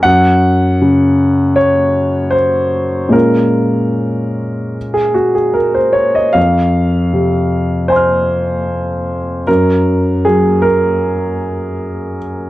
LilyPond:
<<
  \new Staff \with { instrumentName = "Grand piano" } { \time 4/4 \key f \phrygian \tempo 4 = 77 ges''2 des''4 c''4 | bes'2~ bes'16 aes'16 ges'16 aes'16 bes'16 c''16 des''16 ees''16 | f''2 <c'' aes'' c''' f'''>2 | bes'4 aes'8 bes'2 r8 | }
  \new Staff \with { instrumentName = "Grand piano" } { \clef bass \time 4/4 \key f \phrygian ges,4 des2. | <bes, aes des' f'>1 | f,4 c2. | ges,4 ges2. | }
>>